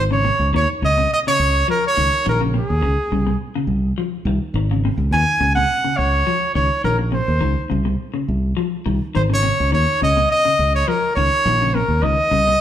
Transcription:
Already playing: G#1
0.11 C#3 C#5
0.25 C3
0.39 C#2
0.53 D#2 D#3 C#5
0.82 C#2 C#3 D#5
0.98 C3
1.14 D#5
1.27 C#3 C#5
1.39 C#2
1.68 F3 A#4
1.87 C#5
1.97 C#2 D#3
2.26 A#1 D#3 A#4
2.41 C#3
2.54 C3
2.58 G#4
2.70 D#2
2.83 C#2, muted clean electric guitar stroke
3.12 C2 C#3
3.27 C3
3.55 C#3
3.67 C2
3.98 F3
4.25 C2 D#3
4.54 G#1 D#3
4.71 C#3
4.85 C3
4.98 C#2
5.11 D#2 D#3 G#5
5.40 C#2 C#3
5.56 C3 F#5
5.84 C#3
5.97 C#2 C#5
6.27 F3
6.55 C#2 D#3 C#5
6.84 A#1 D#3 A#4
6.99 muted clean electric guitar stroke
7.12 C3 C5
7.28 D#2
7.41 C#2 D#3
7.70 C2 C#3
7.85 C3
8.14 C#3
8.28 C2
8.57 F3
8.86 C2 D#3
9.15 G#1 D#3 C5
9.30 C#3 C#5
9.43 C3
9.60 C#2
9.72 D#2 D#3 C#5
10.02 C#2 C#3 D#5
10.17 C3
10.31 D#5
10.45 C#3
10.59 C#2
10.75 C#5
10.88 F3 A#4
11.16 C#2 D#3 C#5
11.45 A#1 D#3
11.62 C#3
11.75 C3 A#4
11.88 D#2
12.02 C#2 D#3 D#5
12.31 C2 C#3
12.47 C3

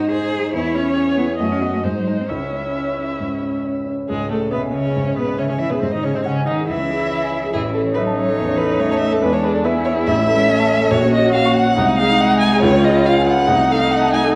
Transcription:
Already playing: G#2 D#4 C5
0.11 G#4 C5
0.31 D#4
0.53 E2 E4 C#5
0.74 C#4 E4
0.96 G#4 C#5
1.17 B3 E4
1.38 F#2 A3 F#4 D#5
1.51 C#4
1.61 B3 F#4 D#5
1.74 A3
1.83 G#2 G#3 D#4 C5
1.98 F#3
2.07 G#3 D#4 D#5
2.21 C4
2.29 C#2 C#4 E4 E5
2.52 C#4
2.75 C#5
2.97 C#4
3.20 G#2
3.42 C#4
3.64 C#5
3.86 C#4
4.09 C#2 G#2 G#3 G#4
4.19 C#4
4.30 A2 A3 G#4 A4
4.41 C#5
4.51 B2 B3 B4 E5
4.63 G#5
4.74 C#3 C#4 C#5 E5
4.85 G#4
4.96 G#2
5.07 C#4
5.16 B2 B3 G#4 B4
5.28 C#5
5.38 C#3 C#4 C#5 E5
5.49 C#3 C#4 C#5 G#5
5.58 E3 E4 E5
5.70 B2 B3 G#4 B4
5.79 G#2 C3 C4 C5
5.91 D#3 D#4 D#5
6.03 C#3 C#4 G#4 C#5
6.14 C3 C4 C5 D#5
6.23 C#3 C#4 C#5 F#5
6.37 G#5
6.46 D#3 D#4 D#5 F#5
6.58 G#4
6.68 C#2 E3 E4 E5
6.79 C#4
6.90 G#4
7.01 C#5
7.11 E5
7.22 G#5
7.33 E5
7.44 G#4
7.53 A1 E3 E4 G#4
7.65 C#4
7.73 A4
7.86 C#5
7.94 F#3 D#4 B4 E5
8.07 A5
8.16 C#5 E5
8.28 A4
8.37 E2 E3
8.49 C#4
8.58 A4 B4
8.69 C#5
8.79 A3 C#5 E5
8.91 C#5 A5
8.99 E5
9.11 A4
9.22 E2 G#3 D4 B4
9.32 D4 C#5
9.43 G#4 B4
9.53 A4 D5
9.64 B3 E4 B4 E5
9.75 G#5
9.85 C#5 E5
9.96 G#4
10.06 A1 A3 E5
10.17 C#4
10.28 G#3 A4
10.39 C#5
10.49 A3 C#4 E5
10.60 A5
10.70 E5
10.81 A4
10.91 A#1 A#3 F#4 C#5
11.02 C#4
11.13 C#5 D#5
11.24 F#4
11.34 F5 F#5
11.45 C#6
11.56 F#5
11.67 C#5
11.77 C2 G#3 D#4
11.87 D#4
11.98 G#4 F5
12.09 D#5
12.20 F#5
12.31 G#5
12.40 F#5 G#5
12.52 G#4
12.61 C#2 F4 C#5
12.73 C#4
12.84 G#4 D#5
12.95 C#5
13.05 F5
13.16 G#5
13.27 F5 F#5
13.37 G#4
13.47 C2 A3 D#4
13.59 D#4
13.70 A4 F5
13.80 D#5
13.91 F#5
14.01 A5
14.12 F#5 G#5
14.23 A4

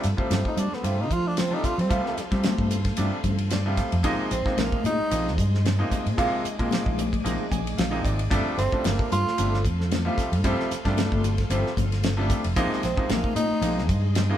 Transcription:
Already playing: A4 F5 C6
0.03 G2, snare, hi-hat pedal, ride, muted conga
0.17 C3 F3 G3 A3 C4, kick
0.31 G2, snare, hi-hat pedal, ride, high conga
0.45 D#4, kick
0.57 G3 D4, hi-hat pedal, ride, high conga
0.72 B3, muted fretless electric bass stroke, snare
0.83 G2 C3 F3 G3 A3 C4 F4, hi-hat pedal, ride
1.01 D#4
1.09 F3 A3 D4 F4, kick, hi-hat pedal, ride
1.27 D4
1.37 C4, snare, hi-hat pedal, ride, high conga
1.50 C3 F3 G3 A3 D4 D#4
1.64 F4, muted fretless electric bass stroke, kick, hi-hat pedal, ride, muted conga
1.78 G3 C4, ride
1.89 C3 F3 G3 A3 F4, kick, hi-hat pedal, ride
2.06 snare
2.17 muted fretless electric bass stroke, snare, hi-hat pedal, ride, muted conga
2.31 C3 F3 G3 A3 C4, kick, snare, ride
2.43 snare, hi-hat pedal, ride, high conga
2.58 G2, kick
2.71 hi-hat pedal, ride, high conga
2.85 kick, snare, ride
2.97 G2 C3 F3 G3 A3 D4, hi-hat pedal, ride, muted conga, low conga
3.24 G2 A3 F4, kick, hi-hat pedal, ride, high conga, low conga
3.38 ride
3.50 D5, snare, hi-hat pedal, ride, high conga
3.66 C3 F3 G3 A3 F4
3.77 F5, kick, snare, hi-hat pedal, ride, muted conga
3.92 F2, ride
4.03 A#1 C3 F3 G#3 A#3 D#4 G#4 D#5, kick, hi-hat pedal, ride, muted conga
4.31 A#1 C4, hi-hat pedal, ride, muted conga
4.45 C3 F3 G#3 A#3 D#4, kick, snare
4.57 A#1 A#3, snare, hi-hat pedal, ride, high conga
4.72 kick
4.84 A#2 D#4, hi-hat pedal, ride, high conga
5.00 muted fretless electric bass stroke
5.11 A#1 C3 F3 G#3 A#3 D#4, hi-hat pedal, ride, muted conga
5.28 snare
5.38 G2 A#3 D4, kick, hi-hat pedal, ride
5.54 snare
5.65 snare, hi-hat pedal, ride, high conga
5.79 C3 F3 G#3 A#3 D#4
5.91 muted fretless electric bass stroke, kick, snare, hi-hat pedal, ride, muted conga
6.06 A#2, ride
6.17 C3 F3 G#3 A#3 F4 D6, kick, hi-hat pedal, ride
6.45 muted fretless electric bass stroke, hi-hat pedal, ride, muted conga
6.59 A#2 C3 F3 G#3 A#3 F4, kick, ride
6.71 snare, hi-hat pedal, ride, high conga
6.86 A#1, kick
6.98 hi-hat pedal, ride, high conga
7.13 kick, ride
7.24 A#1 C3 F3 G#3 A#3 D#4, hi-hat pedal, ride, muted conga, low conga
7.50 A#1 A#3 D#4 G#5, kick, hi-hat pedal, ride, high conga, low conga
7.67 ride
7.77 A#1 F5, snare, hi-hat pedal, ride, high conga
7.91 C3 F3 G#3 A#3 D#4
8.04 G#1 D5, kick, hi-hat pedal, ride, muted conga
8.19 ride
8.30 G1 C3 F3 G3 A3 D4 A4 F5 C6, kick, hi-hat pedal, ride
8.58 G1 C4, snare, hi-hat pedal, ride, muted conga
8.72 C3 F3 G3 A3 D4, kick
8.84 G1 A#3, snare, hi-hat pedal, ride, high conga
8.99 kick
9.11 G2 F4, hi-hat pedal, ride, high conga
9.26 muted fretless electric bass stroke, snare
9.38 G1 C3 F3 G3 A3 D4, hi-hat pedal, ride, muted conga
9.54 snare
9.65 F2, kick, hi-hat pedal, ride
9.81 snare
9.91 snare, hi-hat pedal, ride, high conga
10.05 C3 F3 G3 A3 F4
10.18 muted fretless electric bass stroke, kick, snare, hi-hat pedal, ride, muted conga
10.32 G2, ride
10.44 C3 F3 G3 A3 C4, kick, hi-hat pedal, ride
10.60 snare
10.71 muted fretless electric bass stroke, snare, hi-hat pedal, ride, muted conga
10.85 G2 C3 F3 G3 A3 D4, kick, snare, ride
10.97 snare, hi-hat pedal, ride, high conga
11.12 G1, kick
11.24 hi-hat pedal, ride, high conga
11.38 kick, snare, ride
11.50 G1 C3 F3 G3 A3 C4, hi-hat pedal, ride, muted conga, low conga
11.67 snare
11.76 G1 A3 D4, kick, hi-hat pedal, ride, high conga, low conga
11.92 snare, ride
12.04 snare, hi-hat pedal, ride, high conga
12.17 C3 F3 G3 A3 D4
12.30 kick, snare, hi-hat pedal, ride, muted conga
12.44 F1, ride
12.56 A#1 C3 F3 G#3 A#3 D#4 G#4 D#5 C6, kick, hi-hat pedal, ride
12.71 muted fretless electric bass stroke, snare
12.83 A#1 C4, snare, hi-hat pedal, ride
12.97 C3 F3 G#3 A#3 D#4, kick
13.09 A#1 A#3, snare, hi-hat pedal, ride, high conga
13.24 kick
13.35 A#2 D#4, hi-hat pedal, ride, high conga
13.50 muted fretless electric bass stroke
13.61 A#1 C3 F3 G#3 A#3 D#4, hi-hat pedal, ride, muted conga
13.78 snare
13.88 G2 A#3 D4, kick, hi-hat pedal, ride
14.15 snare, hi-hat pedal, ride, high conga
14.29 C3 F3 G#3 A#3 D#4

